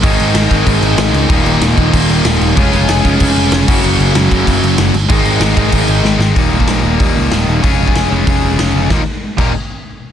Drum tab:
CC |x-x-x-x-x-x-x-x-|x-x-x-x-x-x-x-x-|x-x-x-x-x-x-x-x-|x-x-x-x-x-x-x-x-|
HH |----------------|----------------|----------------|----------------|
SD |----o-------o---|----o-------o---|----o-------o---|----o-------o---|
BD |o-----o-o-------|o-----o-o-------|o-----o-o-----o-|------o-o-------|

CC |x-x-x-x-x-x-----|----------------|----------------|------x---------|
HH |----------------|o---o---o---o---|o---o---o---o---|----------------|
SD |----o-------o-o-|----o-------o---|----o-------o---|o---------------|
BD |o-----o-o-------|o--o----o-------|o--o----o-------|o-----o---------|